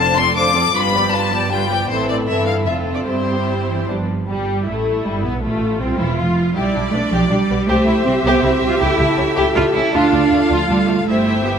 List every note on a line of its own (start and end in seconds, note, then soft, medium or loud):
0.00 0.71 F1 medium
0.00 0.71 F2 medium
0.00 0.16 D3 soft
0.00 0.16 D4 medium
0.00 0.16 F4 soft
0.00 0.16 C5 medium
0.00 0.15 A5 medium
0.15 0.35 F3 soft
0.15 0.35 C4 soft
0.15 0.35 A4 soft
0.15 0.35 D5 medium
0.15 0.35 C6 medium
0.34 0.53 D3 soft
0.34 0.53 D4 soft
0.34 0.54 F4 medium
0.34 0.54 C5 soft
0.34 0.72 D6 medium
0.55 0.74 F3 soft
0.55 0.74 C4 soft
0.55 0.74 A4 soft
0.55 0.74 D5 soft
0.74 1.86 G1 medium
0.74 1.86 G2 medium
0.74 0.92 G3 medium
0.74 0.92 D4 medium
0.74 0.92 F4 soft
0.74 0.92 B4 soft
0.74 1.12 B5 medium
0.94 1.12 F3 soft
0.94 1.12 B3 soft
0.94 1.13 G4 soft
0.94 1.13 D5 soft
1.11 1.31 G3 soft
1.11 1.31 D4 soft
1.11 1.31 F4 soft
1.11 1.31 B4 soft
1.11 1.50 A5 medium
1.31 1.50 F3 soft
1.31 1.50 B3 soft
1.31 1.51 G4 soft
1.31 1.50 D5 soft
1.50 1.68 G3 soft
1.50 1.68 D4 soft
1.50 1.68 F4 soft
1.50 1.68 B4 soft
1.50 1.89 G5 medium
1.70 1.89 F3 soft
1.70 1.89 B3 soft
1.70 1.90 G4 soft
1.70 1.90 D5 soft
1.88 2.25 A1 medium
1.88 2.25 A2 medium
1.88 2.25 E3 soft
1.88 2.25 C4 medium
1.88 2.25 E4 soft
1.88 2.25 A4 soft
1.88 2.07 C5 medium
2.08 2.15 D5 medium
2.26 2.66 G1 soft
2.26 2.66 G2 soft
2.26 2.66 E3 soft
2.26 2.66 C4 soft
2.26 2.66 E4 soft
2.26 2.65 A4 soft
2.26 2.46 E5 medium
2.46 2.54 F5 medium
2.65 3.06 F1 soft
2.65 3.07 F2 soft
2.65 3.06 D3 soft
2.65 3.05 C4 soft
2.65 3.07 F4 soft
2.65 3.06 A4 soft
2.65 2.74 E5 soft
2.94 2.99 D5 soft
3.05 3.87 G1 soft
3.05 3.68 G2 soft
3.05 3.86 G3 soft
3.05 3.87 C4 soft
3.05 3.89 E4 soft
3.05 3.87 G4 soft
3.05 3.86 C5 medium
3.68 3.87 E3 soft
3.87 4.09 G1 soft
3.87 4.09 G2 soft
3.87 4.28 F3 soft
3.87 3.95 G3 soft
3.87 4.08 B3 soft
3.87 4.09 D4 soft
3.87 3.97 G4 soft
4.28 4.65 G1 soft
4.28 4.64 G3 soft
4.28 4.67 G3 medium
4.28 4.65 G3 soft
4.28 4.64 G4 soft
4.66 5.05 A1 soft
4.66 5.05 A3 medium
4.66 5.05 A3 soft
4.66 5.43 E4 soft
5.05 5.24 G1 soft
5.05 5.24 G3 soft
5.05 5.25 G3 medium
5.05 5.25 G3 soft
5.22 5.43 B1 medium
5.22 5.42 B3 soft
5.22 5.43 B3 medium
5.22 5.33 B3 soft
5.43 5.81 A1 medium
5.43 5.80 A3 medium
5.43 5.81 A3 medium
5.43 6.53 F4 medium
5.80 5.99 C2 medium
5.80 5.99 C4 medium
5.80 5.88 C4 medium
5.80 6.00 C4 medium
5.97 6.18 E1 soft
5.97 6.18 E3 medium
5.97 6.17 E4 medium
5.97 6.19 E4 medium
6.17 6.55 F1 soft
6.17 6.55 F3 medium
6.17 6.54 F4 soft
6.17 6.56 F4 soft
6.55 6.63 B1 medium
6.55 6.92 G3 medium
6.55 6.92 E4 medium
6.55 6.73 G4 soft
6.55 7.63 D5 soft
6.55 7.63 D5 medium
6.73 6.81 B1 soft
6.73 6.82 D4 soft
6.92 7.00 B1 soft
6.92 7.11 A3 medium
6.92 7.01 B3 soft
6.92 7.30 D4 medium
7.11 7.18 B1 medium
7.11 7.30 F3 medium
7.11 7.29 G4 medium
7.29 7.37 B1 soft
7.29 7.66 G3 medium
7.29 7.38 D4 soft
7.29 9.93 G4 medium
7.49 7.57 B1 soft
7.49 7.57 B3 soft
7.67 7.75 C2 medium
7.67 8.04 A3 medium
7.67 7.85 G4 medium
7.67 8.78 C5 medium
7.67 9.90 E5 medium
7.86 7.93 C2 soft
7.86 7.94 E4 soft
8.04 8.12 C2 soft
8.04 8.12 C4 medium
8.04 8.14 C4 medium
8.23 8.31 C2 medium
8.23 8.42 B3 medium
8.27 8.43 G4 medium
8.42 8.50 C2 medium
8.42 8.68 C4 medium
8.42 8.51 E4 soft
8.62 8.69 C2 medium
8.62 8.70 C4 medium
8.69 8.73 F4 medium
8.81 8.88 C#2 medium
8.81 9.36 E4 medium
8.81 8.98 G4 medium
8.81 11.08 A4 medium
8.98 9.06 C#2 soft
8.98 9.08 E4 medium
9.17 9.25 C#2 soft
9.17 9.24 C#4 medium
9.36 9.44 C#2 medium
9.36 9.44 E4 medium
9.36 9.54 G4 medium
9.55 9.63 C#2 medium
9.55 9.63 E4 soft
9.55 9.64 F4 medium
9.75 9.82 C#2 medium
9.75 9.83 C#4 medium
9.75 9.93 E4 medium
9.93 10.01 D2 medium
9.93 10.50 D4 medium
9.93 10.30 F4 medium
9.93 10.11 F4 medium
9.93 11.05 F5 medium
10.12 10.19 D2 soft
10.12 10.22 D4 soft
10.30 10.38 D2 soft
10.30 10.41 A3 soft
10.30 11.06 F4 medium
10.49 10.57 D2 medium
10.49 10.69 F3 medium
10.49 10.69 F4 medium
10.68 10.76 D2 soft
10.68 11.06 G3 medium
10.68 10.77 D4 soft
10.87 10.96 D2 soft
10.87 10.95 A3 soft
11.07 11.59 G1 medium
11.07 11.45 A3 medium
11.07 11.45 E4 medium
11.07 11.59 G4 medium
11.07 11.59 C5 medium
11.07 11.59 E5 medium
11.44 11.59 B3 medium
11.44 11.59 G4 medium